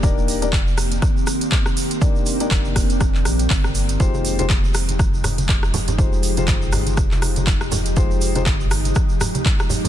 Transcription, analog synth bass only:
X:1
M:4/4
L:1/8
Q:"Swing 16ths" 1/4=121
K:Fdor
V:1 name="Analog synth bass" clef=bass
E,,,2 F,,,2 z4 | z2 F,,,3 B,,, G,,,2 | F,,,4- F,,, F,,,2 F,,,- | F,,,2 G,,,2 F,,,3 F,,,- |
F,,,2 G,,,2 z4 |]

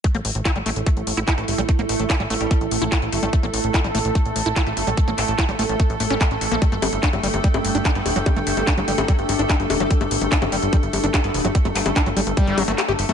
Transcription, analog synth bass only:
X:1
M:4/4
L:1/16
Q:1/4=146
K:none
V:1 name="Analog synth bass" clef=bass
z A,,, A,,, A,,, z A,,, A,,, A,,, z A,,, A,,, A,,, z A,,, G,,, A,,, | z A,,, A,,, A,,, z A,,, A,,, A,,, z A,,, A,,, A,,, z A,,, G,,, A,,, | z A,,, A,,, A,,, z A,,, A,,, A,,, z A,,, A,,, A,,, z A,,, G,,, A,,, | z A,,, A,,, A,,, z A,,, A,,, A,,, z A,,, A,,, A,,, z A,,, A,,, _B,,, |
z G,,, G,,, G,,, z G,,, G,,, G,,, z G,,, G,,, G,,, z G,,, D,,, G,,, | z G,,, G,,, G,,, z G,,, G,,, G,,, z G,,, G,,, G,,, z G,,, D,,, G,,, | z G,,, G,,, G,,, z G,,, G,,, G,,, z G,,, G,,, G,,, z G,,, D,,, G,,, | z G,,, G,,, G,,, z G,,, G,,, G,,, z G,,, G,,, G,,, z G,,, G,,, G,, |]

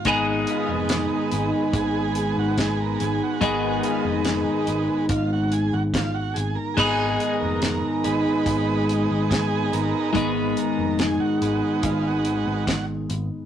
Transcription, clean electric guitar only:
X:1
M:4/4
L:1/8
Q:1/4=71
K:G#dor
V:1 name="Clean electric guitar"
[G,,D,G,B,DG]8 | [G,,D,G,B,DG]8 | [G,,D,G,B,DG]8 | [G,,D,G,B,DG]8 |]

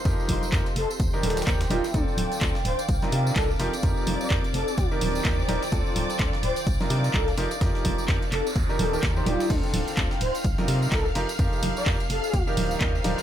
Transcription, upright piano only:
X:1
M:4/4
L:1/16
Q:"Swing 16ths" 1/4=127
K:Fmix
V:1 name="Upright piano"
[F,EFGB]4 [F,EFGB] z4 [E,DEGB]3 [E,DEGB] z [D,DEGB] z | [D,CDFA]4 [D,CDFA] z4 [C,DEFB]3 [DEFB] z [F,EFGB] z | [F,EFGB]4 [F,EFGB] z4 [E,DEGB]3 [E,DEGB] z [D,DEGB] z | [D,CDFA]4 [D,CDFA] z4 [C,DEFB]3 [DEFB] z [F,EFGB] z |
[F,EFGB]4 [F,EFGB] z4 [E,DEGB]2 [E,DEGB]2 [E,DEGc] [D,DEGd]2 | [D,CDFA]4 [D,CDFA] z4 [C,DEFB]3 [DEFB] z [F,EFGB] z | [F,EFGB]4 [F,EFGB] z4 [E,DEGB]3 [E,DEGB] z [D,DEGB] z |]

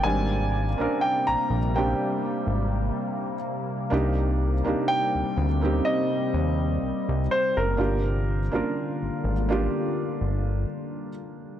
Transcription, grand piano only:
X:1
M:4/4
L:1/16
Q:"Swing 16ths" 1/4=62
K:Cm
V:1 name="Grand piano"
a4 g b2 g6- g z2 | z4 g4 e6 c B- | B12 z4 |]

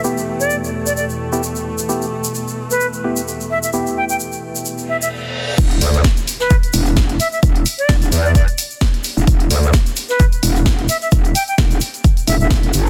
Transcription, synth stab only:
X:1
M:4/4
L:1/16
Q:"Swing 16ths" 1/4=130
K:Em
V:1 name="Synth stab"
[B,EG]8- [B,EG]3 [B,EG] z4 | [B,EG] z8 z [B,EG] z4 z | [B,EG]8- [B,EG]3 z4 z | z16 |
z16 | z16 | z16 |]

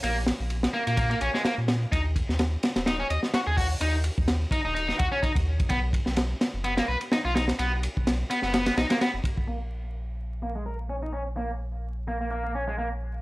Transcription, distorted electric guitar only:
X:1
M:4/4
L:1/16
Q:"Swing 16ths" 1/4=127
K:Cblyd
V:1 name="Distorted electric guitar"
B, z4 z B, B, B, B, D A, B, z3 | E z6 z E D e z G A G z | E z4 z E E E E G D E z3 | =B, z6 z B, ^A, =B z ^D F D z |
=B, z4 z B, B, B, B, ^D ^A, B, z3 | B, z6 z B, A, B z D E D z | B, z4 z B, B, B, B, D A, B, z3 |]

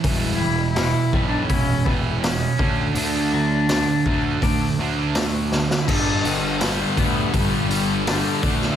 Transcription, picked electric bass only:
X:1
M:4/4
L:1/8
Q:1/4=82
K:Glyd
V:1 name="Picked electric bass" clef=bass
E,,,3 B,,, E,,, E,,,2 D,, | D,,3 D,, D,, D,,3 | G,,, G,,,2 D,, G,,,3 D,, |]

